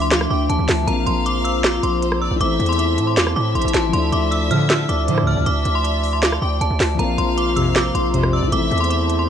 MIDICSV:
0, 0, Header, 1, 9, 480
1, 0, Start_track
1, 0, Key_signature, -1, "minor"
1, 0, Tempo, 382166
1, 1102, Time_signature, 4, 2, 24, 8
1, 11668, End_track
2, 0, Start_track
2, 0, Title_t, "Synth bell"
2, 0, Program_c, 0, 98
2, 20, Note_on_c, 0, 84, 83
2, 121, Note_off_c, 0, 84, 0
2, 139, Note_on_c, 0, 86, 87
2, 340, Note_off_c, 0, 86, 0
2, 381, Note_on_c, 0, 86, 82
2, 581, Note_off_c, 0, 86, 0
2, 622, Note_on_c, 0, 81, 84
2, 1073, Note_off_c, 0, 81, 0
2, 1098, Note_on_c, 0, 82, 99
2, 1299, Note_off_c, 0, 82, 0
2, 1337, Note_on_c, 0, 84, 85
2, 1539, Note_off_c, 0, 84, 0
2, 1583, Note_on_c, 0, 86, 84
2, 1782, Note_off_c, 0, 86, 0
2, 1816, Note_on_c, 0, 88, 83
2, 2018, Note_off_c, 0, 88, 0
2, 2063, Note_on_c, 0, 86, 96
2, 2262, Note_off_c, 0, 86, 0
2, 2302, Note_on_c, 0, 84, 79
2, 2753, Note_off_c, 0, 84, 0
2, 2783, Note_on_c, 0, 88, 72
2, 2982, Note_off_c, 0, 88, 0
2, 3024, Note_on_c, 0, 86, 108
2, 3361, Note_off_c, 0, 86, 0
2, 3377, Note_on_c, 0, 84, 92
2, 3479, Note_off_c, 0, 84, 0
2, 3500, Note_on_c, 0, 86, 81
2, 3839, Note_off_c, 0, 86, 0
2, 3858, Note_on_c, 0, 84, 76
2, 3960, Note_off_c, 0, 84, 0
2, 3974, Note_on_c, 0, 86, 88
2, 4177, Note_off_c, 0, 86, 0
2, 4221, Note_on_c, 0, 86, 89
2, 4421, Note_off_c, 0, 86, 0
2, 4461, Note_on_c, 0, 84, 81
2, 4661, Note_off_c, 0, 84, 0
2, 4699, Note_on_c, 0, 81, 74
2, 4900, Note_off_c, 0, 81, 0
2, 4939, Note_on_c, 0, 84, 103
2, 5140, Note_off_c, 0, 84, 0
2, 5180, Note_on_c, 0, 86, 92
2, 5380, Note_off_c, 0, 86, 0
2, 5418, Note_on_c, 0, 88, 78
2, 5619, Note_off_c, 0, 88, 0
2, 5663, Note_on_c, 0, 89, 94
2, 5862, Note_off_c, 0, 89, 0
2, 5900, Note_on_c, 0, 88, 84
2, 6101, Note_off_c, 0, 88, 0
2, 6141, Note_on_c, 0, 86, 85
2, 6593, Note_off_c, 0, 86, 0
2, 6622, Note_on_c, 0, 89, 92
2, 6821, Note_off_c, 0, 89, 0
2, 6862, Note_on_c, 0, 86, 100
2, 7201, Note_off_c, 0, 86, 0
2, 7224, Note_on_c, 0, 84, 90
2, 7323, Note_off_c, 0, 84, 0
2, 7338, Note_on_c, 0, 86, 72
2, 7678, Note_off_c, 0, 86, 0
2, 7700, Note_on_c, 0, 84, 82
2, 7801, Note_off_c, 0, 84, 0
2, 7820, Note_on_c, 0, 86, 88
2, 8020, Note_off_c, 0, 86, 0
2, 8064, Note_on_c, 0, 86, 83
2, 8263, Note_off_c, 0, 86, 0
2, 8304, Note_on_c, 0, 81, 87
2, 8754, Note_off_c, 0, 81, 0
2, 8780, Note_on_c, 0, 82, 98
2, 8980, Note_off_c, 0, 82, 0
2, 9020, Note_on_c, 0, 84, 89
2, 9220, Note_off_c, 0, 84, 0
2, 9264, Note_on_c, 0, 86, 81
2, 9463, Note_off_c, 0, 86, 0
2, 9499, Note_on_c, 0, 88, 86
2, 9700, Note_off_c, 0, 88, 0
2, 9748, Note_on_c, 0, 86, 99
2, 9945, Note_off_c, 0, 86, 0
2, 9984, Note_on_c, 0, 84, 80
2, 10434, Note_off_c, 0, 84, 0
2, 10465, Note_on_c, 0, 88, 71
2, 10663, Note_off_c, 0, 88, 0
2, 10707, Note_on_c, 0, 86, 107
2, 11043, Note_off_c, 0, 86, 0
2, 11060, Note_on_c, 0, 84, 93
2, 11160, Note_off_c, 0, 84, 0
2, 11182, Note_on_c, 0, 86, 85
2, 11520, Note_off_c, 0, 86, 0
2, 11543, Note_on_c, 0, 84, 81
2, 11642, Note_off_c, 0, 84, 0
2, 11668, End_track
3, 0, Start_track
3, 0, Title_t, "Violin section"
3, 0, Program_c, 1, 48
3, 142, Note_on_c, 1, 77, 84
3, 370, Note_off_c, 1, 77, 0
3, 382, Note_on_c, 1, 79, 81
3, 610, Note_off_c, 1, 79, 0
3, 1102, Note_on_c, 1, 77, 106
3, 2492, Note_off_c, 1, 77, 0
3, 2541, Note_on_c, 1, 72, 83
3, 2769, Note_off_c, 1, 72, 0
3, 2781, Note_on_c, 1, 74, 90
3, 3009, Note_off_c, 1, 74, 0
3, 3020, Note_on_c, 1, 76, 112
3, 3931, Note_off_c, 1, 76, 0
3, 3983, Note_on_c, 1, 77, 80
3, 4210, Note_off_c, 1, 77, 0
3, 4222, Note_on_c, 1, 76, 88
3, 4899, Note_off_c, 1, 76, 0
3, 4942, Note_on_c, 1, 76, 115
3, 6332, Note_off_c, 1, 76, 0
3, 6381, Note_on_c, 1, 72, 91
3, 6609, Note_off_c, 1, 72, 0
3, 6622, Note_on_c, 1, 74, 81
3, 6850, Note_off_c, 1, 74, 0
3, 6862, Note_on_c, 1, 76, 107
3, 7772, Note_off_c, 1, 76, 0
3, 7821, Note_on_c, 1, 77, 87
3, 8049, Note_off_c, 1, 77, 0
3, 8060, Note_on_c, 1, 79, 82
3, 8289, Note_off_c, 1, 79, 0
3, 8782, Note_on_c, 1, 77, 108
3, 10172, Note_off_c, 1, 77, 0
3, 10224, Note_on_c, 1, 72, 84
3, 10451, Note_off_c, 1, 72, 0
3, 10464, Note_on_c, 1, 74, 95
3, 10691, Note_off_c, 1, 74, 0
3, 10705, Note_on_c, 1, 76, 116
3, 11613, Note_off_c, 1, 76, 0
3, 11668, End_track
4, 0, Start_track
4, 0, Title_t, "Analog synth pad"
4, 0, Program_c, 2, 89
4, 0, Note_on_c, 2, 53, 77
4, 0, Note_on_c, 2, 62, 84
4, 0, Note_on_c, 2, 76, 94
4, 1063, Note_off_c, 2, 76, 0
4, 1064, Note_off_c, 2, 53, 0
4, 1064, Note_off_c, 2, 62, 0
4, 1102, Note_on_c, 2, 82, 96
4, 1103, Note_on_c, 2, 65, 85
4, 1103, Note_on_c, 2, 72, 77
4, 3003, Note_off_c, 2, 65, 0
4, 3003, Note_off_c, 2, 82, 0
4, 3018, Note_on_c, 2, 64, 83
4, 3019, Note_on_c, 2, 81, 92
4, 4904, Note_off_c, 2, 72, 0
4, 4921, Note_off_c, 2, 64, 0
4, 4921, Note_off_c, 2, 81, 0
4, 4941, Note_on_c, 2, 74, 78
4, 4941, Note_on_c, 2, 76, 87
4, 4941, Note_on_c, 2, 81, 91
4, 8743, Note_off_c, 2, 74, 0
4, 8743, Note_off_c, 2, 76, 0
4, 8743, Note_off_c, 2, 81, 0
4, 8782, Note_on_c, 2, 65, 82
4, 8782, Note_on_c, 2, 72, 79
4, 8782, Note_on_c, 2, 82, 95
4, 10683, Note_off_c, 2, 65, 0
4, 10683, Note_off_c, 2, 72, 0
4, 10683, Note_off_c, 2, 82, 0
4, 10701, Note_on_c, 2, 72, 77
4, 10701, Note_on_c, 2, 81, 91
4, 10702, Note_on_c, 2, 64, 85
4, 11668, Note_off_c, 2, 64, 0
4, 11668, Note_off_c, 2, 72, 0
4, 11668, Note_off_c, 2, 81, 0
4, 11668, End_track
5, 0, Start_track
5, 0, Title_t, "Grand piano"
5, 0, Program_c, 3, 0
5, 0, Control_c, 3, 64, 127
5, 0, Note_on_c, 3, 53, 69
5, 0, Note_on_c, 3, 57, 64
5, 0, Note_on_c, 3, 62, 65
5, 0, Note_on_c, 3, 64, 82
5, 1021, Note_off_c, 3, 53, 0
5, 1040, Note_on_c, 3, 53, 70
5, 1041, Note_off_c, 3, 57, 0
5, 1061, Note_off_c, 3, 62, 0
5, 1081, Note_off_c, 3, 64, 0
5, 1081, Note_on_c, 3, 58, 64
5, 1120, Control_c, 3, 64, 0
5, 1121, Note_on_c, 3, 60, 67
5, 1162, Note_on_c, 3, 65, 81
5, 1352, Control_c, 3, 64, 127
5, 2952, Note_off_c, 3, 53, 0
5, 2963, Note_on_c, 3, 52, 71
5, 2973, Note_off_c, 3, 58, 0
5, 2993, Note_off_c, 3, 60, 0
5, 3003, Note_on_c, 3, 57, 65
5, 3014, Note_off_c, 3, 65, 0
5, 3038, Control_c, 3, 64, 0
5, 3043, Note_on_c, 3, 60, 67
5, 3083, Note_on_c, 3, 64, 81
5, 3274, Control_c, 3, 64, 127
5, 4873, Note_off_c, 3, 52, 0
5, 4880, Note_on_c, 3, 53, 67
5, 4894, Note_off_c, 3, 57, 0
5, 4914, Note_off_c, 3, 60, 0
5, 4921, Note_on_c, 3, 57, 63
5, 4935, Note_off_c, 3, 64, 0
5, 4959, Control_c, 3, 64, 0
5, 4961, Note_on_c, 3, 62, 65
5, 5001, Note_on_c, 3, 64, 79
5, 5156, Control_c, 3, 64, 127
5, 8701, Note_off_c, 3, 53, 0
5, 8721, Note_off_c, 3, 57, 0
5, 8721, Note_on_c, 3, 53, 70
5, 8741, Note_off_c, 3, 62, 0
5, 8761, Note_off_c, 3, 64, 0
5, 8762, Note_on_c, 3, 58, 66
5, 8797, Control_c, 3, 64, 0
5, 8801, Note_on_c, 3, 60, 65
5, 8842, Note_on_c, 3, 65, 81
5, 9009, Control_c, 3, 64, 127
5, 10633, Note_off_c, 3, 53, 0
5, 10644, Note_on_c, 3, 52, 69
5, 10653, Note_off_c, 3, 58, 0
5, 10673, Note_off_c, 3, 60, 0
5, 10685, Note_on_c, 3, 57, 66
5, 10694, Note_off_c, 3, 65, 0
5, 10720, Control_c, 3, 64, 0
5, 10725, Note_on_c, 3, 60, 67
5, 10765, Note_on_c, 3, 64, 81
5, 10927, Control_c, 3, 64, 127
5, 11668, Note_off_c, 3, 52, 0
5, 11668, Note_off_c, 3, 57, 0
5, 11668, Note_off_c, 3, 60, 0
5, 11668, Note_off_c, 3, 64, 0
5, 11668, End_track
6, 0, Start_track
6, 0, Title_t, "Analog polysynth"
6, 0, Program_c, 4, 90
6, 5662, Note_on_c, 4, 45, 106
6, 5662, Note_on_c, 4, 50, 100
6, 5662, Note_on_c, 4, 53, 111
6, 5764, Note_off_c, 4, 45, 0
6, 5764, Note_off_c, 4, 50, 0
6, 5764, Note_off_c, 4, 53, 0
6, 6382, Note_on_c, 4, 45, 109
6, 6382, Note_on_c, 4, 50, 106
6, 6382, Note_on_c, 4, 53, 107
6, 6724, Note_off_c, 4, 45, 0
6, 6724, Note_off_c, 4, 50, 0
6, 6724, Note_off_c, 4, 53, 0
6, 9503, Note_on_c, 4, 41, 102
6, 9503, Note_on_c, 4, 48, 125
6, 9604, Note_off_c, 4, 41, 0
6, 9605, Note_off_c, 4, 48, 0
6, 10223, Note_on_c, 4, 41, 95
6, 10223, Note_on_c, 4, 48, 116
6, 10565, Note_off_c, 4, 41, 0
6, 10565, Note_off_c, 4, 48, 0
6, 11668, End_track
7, 0, Start_track
7, 0, Title_t, "808-style bass"
7, 0, Program_c, 5, 38
7, 0, Note_on_c, 5, 38, 104
7, 344, Note_off_c, 5, 38, 0
7, 383, Note_on_c, 5, 38, 103
7, 613, Note_off_c, 5, 38, 0
7, 622, Note_on_c, 5, 38, 109
7, 733, Note_off_c, 5, 38, 0
7, 741, Note_on_c, 5, 38, 103
7, 853, Note_off_c, 5, 38, 0
7, 861, Note_on_c, 5, 38, 107
7, 1092, Note_off_c, 5, 38, 0
7, 1101, Note_on_c, 5, 34, 115
7, 1332, Note_off_c, 5, 34, 0
7, 1341, Note_on_c, 5, 34, 103
7, 2263, Note_off_c, 5, 34, 0
7, 2300, Note_on_c, 5, 34, 99
7, 2877, Note_off_c, 5, 34, 0
7, 2901, Note_on_c, 5, 34, 98
7, 3013, Note_off_c, 5, 34, 0
7, 3021, Note_on_c, 5, 33, 115
7, 3252, Note_off_c, 5, 33, 0
7, 3261, Note_on_c, 5, 40, 108
7, 3741, Note_on_c, 5, 45, 105
7, 3760, Note_off_c, 5, 40, 0
7, 3981, Note_on_c, 5, 40, 106
7, 4000, Note_off_c, 5, 45, 0
7, 4210, Note_off_c, 5, 40, 0
7, 4221, Note_on_c, 5, 45, 102
7, 4452, Note_off_c, 5, 45, 0
7, 4460, Note_on_c, 5, 33, 110
7, 4573, Note_off_c, 5, 33, 0
7, 4581, Note_on_c, 5, 33, 102
7, 4692, Note_off_c, 5, 33, 0
7, 4699, Note_on_c, 5, 33, 107
7, 4931, Note_off_c, 5, 33, 0
7, 4940, Note_on_c, 5, 38, 117
7, 5172, Note_off_c, 5, 38, 0
7, 5181, Note_on_c, 5, 38, 107
7, 5662, Note_on_c, 5, 50, 104
7, 5681, Note_off_c, 5, 38, 0
7, 6118, Note_off_c, 5, 50, 0
7, 6142, Note_on_c, 5, 38, 104
7, 6381, Note_on_c, 5, 45, 100
7, 6400, Note_off_c, 5, 38, 0
7, 6562, Note_on_c, 5, 38, 101
7, 6580, Note_off_c, 5, 45, 0
7, 6733, Note_off_c, 5, 38, 0
7, 6742, Note_on_c, 5, 38, 99
7, 6854, Note_off_c, 5, 38, 0
7, 6861, Note_on_c, 5, 38, 116
7, 7092, Note_off_c, 5, 38, 0
7, 7101, Note_on_c, 5, 38, 108
7, 8023, Note_off_c, 5, 38, 0
7, 8062, Note_on_c, 5, 38, 103
7, 8292, Note_off_c, 5, 38, 0
7, 8301, Note_on_c, 5, 38, 109
7, 8417, Note_off_c, 5, 38, 0
7, 8422, Note_on_c, 5, 38, 101
7, 8533, Note_off_c, 5, 38, 0
7, 8540, Note_on_c, 5, 38, 106
7, 8772, Note_off_c, 5, 38, 0
7, 8781, Note_on_c, 5, 34, 115
7, 9012, Note_off_c, 5, 34, 0
7, 9021, Note_on_c, 5, 34, 105
7, 9943, Note_off_c, 5, 34, 0
7, 9983, Note_on_c, 5, 34, 103
7, 10559, Note_off_c, 5, 34, 0
7, 10584, Note_on_c, 5, 34, 98
7, 10695, Note_off_c, 5, 34, 0
7, 10703, Note_on_c, 5, 33, 114
7, 10933, Note_off_c, 5, 33, 0
7, 10942, Note_on_c, 5, 40, 108
7, 11662, Note_off_c, 5, 40, 0
7, 11668, End_track
8, 0, Start_track
8, 0, Title_t, "Downlifter"
8, 0, Program_c, 6, 103
8, 0, Note_on_c, 6, 60, 89
8, 1102, Note_off_c, 6, 60, 0
8, 11668, End_track
9, 0, Start_track
9, 0, Title_t, "Drums"
9, 142, Note_on_c, 9, 38, 121
9, 143, Note_on_c, 9, 42, 72
9, 150, Note_on_c, 9, 39, 96
9, 263, Note_on_c, 9, 37, 95
9, 268, Note_off_c, 9, 38, 0
9, 269, Note_off_c, 9, 42, 0
9, 276, Note_off_c, 9, 39, 0
9, 389, Note_off_c, 9, 37, 0
9, 623, Note_on_c, 9, 42, 79
9, 748, Note_off_c, 9, 42, 0
9, 859, Note_on_c, 9, 46, 62
9, 861, Note_on_c, 9, 38, 97
9, 869, Note_on_c, 9, 39, 79
9, 985, Note_off_c, 9, 46, 0
9, 987, Note_off_c, 9, 38, 0
9, 995, Note_off_c, 9, 39, 0
9, 1101, Note_on_c, 9, 42, 80
9, 1227, Note_off_c, 9, 42, 0
9, 1339, Note_on_c, 9, 42, 67
9, 1465, Note_off_c, 9, 42, 0
9, 1583, Note_on_c, 9, 42, 78
9, 1708, Note_off_c, 9, 42, 0
9, 1822, Note_on_c, 9, 42, 77
9, 1947, Note_off_c, 9, 42, 0
9, 2062, Note_on_c, 9, 38, 119
9, 2063, Note_on_c, 9, 42, 75
9, 2070, Note_on_c, 9, 39, 95
9, 2187, Note_off_c, 9, 38, 0
9, 2188, Note_off_c, 9, 42, 0
9, 2195, Note_off_c, 9, 39, 0
9, 2303, Note_on_c, 9, 42, 84
9, 2429, Note_off_c, 9, 42, 0
9, 2543, Note_on_c, 9, 42, 82
9, 2662, Note_on_c, 9, 37, 92
9, 2668, Note_off_c, 9, 42, 0
9, 2787, Note_off_c, 9, 37, 0
9, 3022, Note_on_c, 9, 42, 78
9, 3148, Note_off_c, 9, 42, 0
9, 3263, Note_on_c, 9, 42, 42
9, 3343, Note_off_c, 9, 42, 0
9, 3343, Note_on_c, 9, 42, 57
9, 3423, Note_off_c, 9, 42, 0
9, 3423, Note_on_c, 9, 42, 71
9, 3504, Note_off_c, 9, 42, 0
9, 3504, Note_on_c, 9, 42, 77
9, 3629, Note_off_c, 9, 42, 0
9, 3742, Note_on_c, 9, 42, 79
9, 3868, Note_off_c, 9, 42, 0
9, 3982, Note_on_c, 9, 38, 121
9, 3983, Note_on_c, 9, 42, 76
9, 3990, Note_on_c, 9, 39, 96
9, 4103, Note_on_c, 9, 37, 95
9, 4108, Note_off_c, 9, 38, 0
9, 4109, Note_off_c, 9, 42, 0
9, 4116, Note_off_c, 9, 39, 0
9, 4229, Note_off_c, 9, 37, 0
9, 4462, Note_on_c, 9, 42, 50
9, 4541, Note_off_c, 9, 42, 0
9, 4541, Note_on_c, 9, 42, 67
9, 4622, Note_off_c, 9, 42, 0
9, 4622, Note_on_c, 9, 42, 83
9, 4699, Note_off_c, 9, 42, 0
9, 4699, Note_on_c, 9, 42, 87
9, 4701, Note_on_c, 9, 38, 97
9, 4709, Note_on_c, 9, 39, 76
9, 4825, Note_off_c, 9, 42, 0
9, 4827, Note_off_c, 9, 38, 0
9, 4835, Note_off_c, 9, 39, 0
9, 4941, Note_on_c, 9, 42, 78
9, 5067, Note_off_c, 9, 42, 0
9, 5181, Note_on_c, 9, 42, 71
9, 5306, Note_off_c, 9, 42, 0
9, 5423, Note_on_c, 9, 42, 77
9, 5549, Note_off_c, 9, 42, 0
9, 5662, Note_on_c, 9, 42, 76
9, 5787, Note_off_c, 9, 42, 0
9, 5901, Note_on_c, 9, 38, 118
9, 5902, Note_on_c, 9, 42, 74
9, 5909, Note_on_c, 9, 39, 99
9, 6027, Note_off_c, 9, 38, 0
9, 6027, Note_off_c, 9, 42, 0
9, 6034, Note_off_c, 9, 39, 0
9, 6144, Note_on_c, 9, 42, 80
9, 6269, Note_off_c, 9, 42, 0
9, 6382, Note_on_c, 9, 42, 85
9, 6502, Note_on_c, 9, 37, 91
9, 6508, Note_off_c, 9, 42, 0
9, 6628, Note_off_c, 9, 37, 0
9, 6861, Note_on_c, 9, 42, 82
9, 6987, Note_off_c, 9, 42, 0
9, 7099, Note_on_c, 9, 42, 69
9, 7225, Note_off_c, 9, 42, 0
9, 7342, Note_on_c, 9, 42, 76
9, 7468, Note_off_c, 9, 42, 0
9, 7581, Note_on_c, 9, 46, 55
9, 7706, Note_off_c, 9, 46, 0
9, 7821, Note_on_c, 9, 38, 121
9, 7822, Note_on_c, 9, 42, 74
9, 7829, Note_on_c, 9, 39, 96
9, 7943, Note_on_c, 9, 37, 94
9, 7947, Note_off_c, 9, 38, 0
9, 7947, Note_off_c, 9, 42, 0
9, 7955, Note_off_c, 9, 39, 0
9, 8069, Note_off_c, 9, 37, 0
9, 8304, Note_on_c, 9, 42, 83
9, 8429, Note_off_c, 9, 42, 0
9, 8540, Note_on_c, 9, 46, 62
9, 8542, Note_on_c, 9, 38, 95
9, 8550, Note_on_c, 9, 39, 77
9, 8666, Note_off_c, 9, 46, 0
9, 8668, Note_off_c, 9, 38, 0
9, 8676, Note_off_c, 9, 39, 0
9, 8783, Note_on_c, 9, 42, 77
9, 8908, Note_off_c, 9, 42, 0
9, 9021, Note_on_c, 9, 42, 69
9, 9147, Note_off_c, 9, 42, 0
9, 9264, Note_on_c, 9, 42, 79
9, 9390, Note_off_c, 9, 42, 0
9, 9503, Note_on_c, 9, 42, 77
9, 9629, Note_off_c, 9, 42, 0
9, 9743, Note_on_c, 9, 38, 119
9, 9744, Note_on_c, 9, 42, 72
9, 9751, Note_on_c, 9, 39, 94
9, 9869, Note_off_c, 9, 38, 0
9, 9870, Note_off_c, 9, 42, 0
9, 9877, Note_off_c, 9, 39, 0
9, 9985, Note_on_c, 9, 42, 84
9, 10111, Note_off_c, 9, 42, 0
9, 10223, Note_on_c, 9, 42, 82
9, 10343, Note_on_c, 9, 37, 91
9, 10349, Note_off_c, 9, 42, 0
9, 10468, Note_off_c, 9, 37, 0
9, 10704, Note_on_c, 9, 42, 81
9, 10830, Note_off_c, 9, 42, 0
9, 10945, Note_on_c, 9, 42, 43
9, 11024, Note_off_c, 9, 42, 0
9, 11024, Note_on_c, 9, 42, 58
9, 11104, Note_off_c, 9, 42, 0
9, 11104, Note_on_c, 9, 42, 74
9, 11185, Note_off_c, 9, 42, 0
9, 11185, Note_on_c, 9, 42, 75
9, 11311, Note_off_c, 9, 42, 0
9, 11424, Note_on_c, 9, 42, 79
9, 11549, Note_off_c, 9, 42, 0
9, 11668, End_track
0, 0, End_of_file